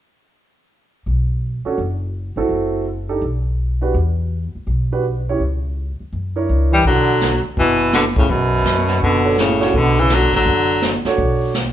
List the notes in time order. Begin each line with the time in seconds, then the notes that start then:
1.06 B1
1.65 C#4 D4 F#4 A4, muted upright bass stroke
1.78 F#1
2.36 G1 C4 E4 F#4 A4
2.49 F#1
3.09 D4 D#4 G4 A4
3.21 B1
3.81 D4 F#4 G4 B4
3.94 E2
4.55 muted upright bass stroke
4.67 B1
4.92 D4 F#4 G4 B4
5.29 C#4 E4 G4 C#5
5.40 C#2
6.00 muted upright bass stroke
6.13 F#2
6.36 D4 E4 A#4 C#5
6.49 C#2
6.72 E3 G3
6.85 B1 D3 F#3, brush sweep, kick
7.21 snare, hi-hat pedal
7.43 muted upright bass stroke
7.57 F#1 B2 E3, brush sweep, kick
7.93 B2 D3, snare, hi-hat pedal
8.16 A2 C#3, kick
8.29 B1 F#2 B2, brush sweep, kick
8.64 F#2, snare, hi-hat pedal
8.88 snare
9.01 F#1 B2 D3, brush sweep, kick
9.25 D4 F#4 A4 C#5
9.38 A2 C#3, snare, hi-hat pedal
9.60 D4 F#4 A4 C#5, snare
9.74 B1 B2 D3, brush sweep, kick
9.99 C#3 E3
10.10 D3 F#3, snare, hi-hat pedal
10.32 A1 D3 F#3, snare
10.45 F#1, brush sweep, kick
10.82 snare, hi-hat pedal
11.04 D4 F#4 A4 C#5, muted upright bass stroke, snare
11.18 B1, brush sweep, kick
11.54 snare, hi-hat pedal